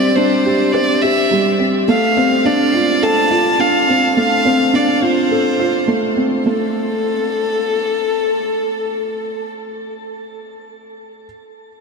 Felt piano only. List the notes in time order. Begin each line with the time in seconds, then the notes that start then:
Already playing: G3 C4 D4 G4 C5
0.17 D4
0.45 G4
0.74 C5
1.03 G4
1.31 G3
1.59 C4
1.88 A3
2.17 C4
2.45 D4
2.74 F4
3.02 A4
3.31 F4
3.59 D4
3.88 C4
4.17 A3
4.45 C4
4.74 D4
5.02 F4
5.31 A4
5.59 F4
5.88 A3
6.17 C4
6.46 A3